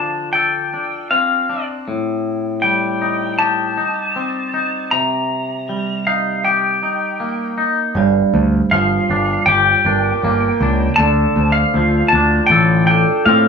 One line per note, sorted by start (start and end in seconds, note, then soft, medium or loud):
0.00 0.72 D3 soft
0.00 1.49 F3 soft
0.00 0.73 D4 soft
0.00 0.32 A5 soft
0.33 1.87 A4 soft
0.33 1.10 G5 soft
0.74 1.48 D4 soft
1.11 4.16 C4 soft
1.11 1.64 F5 soft
1.49 1.87 D4 soft
1.88 3.78 A2 soft
2.62 5.69 G3 soft
2.62 3.38 G5 soft
3.02 3.76 D#4 soft
3.39 6.44 G4 soft
3.39 4.91 A5 medium
3.77 4.53 D#4 soft
4.16 4.92 C4 soft
4.54 4.92 D#4 soft
4.91 6.82 C3 soft
4.91 6.09 A#5 medium
5.69 7.59 G3 soft
6.07 6.82 D#4 soft
6.07 6.44 F5 soft
6.44 7.96 G4 soft
6.44 7.54 G5 soft
6.83 7.56 D#4 soft
7.20 7.96 A#3 soft
7.58 7.96 D#4 soft
7.95 8.22 G1 medium
7.95 9.86 G2 medium
7.95 8.34 D5 medium
8.33 8.60 D2 medium
8.33 9.10 C5 medium
8.71 8.98 G1 soft
8.71 10.62 F3 soft
8.71 9.45 F5 medium
9.10 9.36 G1 medium
9.10 9.85 D4 soft
9.46 9.73 G1 medium
9.46 11.00 G4 medium
9.46 11.03 G5 medium
9.85 10.12 G1 medium
9.85 10.61 D4 soft
9.85 10.61 A#4 medium
10.23 10.50 G1 medium
10.23 11.00 A#3 soft
10.61 10.87 C#2 medium
10.61 11.00 D4 soft
10.96 11.25 D2 medium
10.96 11.56 A5 medium
11.00 12.89 D3 medium
11.00 11.38 D5 medium
11.36 11.63 D2 medium
11.36 12.14 C5 medium
11.52 12.13 F5 medium
11.74 12.01 D2 medium
11.74 13.48 F3 soft
12.08 12.46 A5 medium
12.13 12.39 D2 medium
12.13 12.90 D4 soft
12.47 13.03 A1 medium
12.47 12.86 G5 medium
12.52 13.48 A4 medium
12.87 13.48 D4 soft
12.87 13.48 A4 medium
12.87 13.25 G5 medium
13.26 13.48 A2 medium
13.26 13.48 C4 medium
13.26 13.48 F5 medium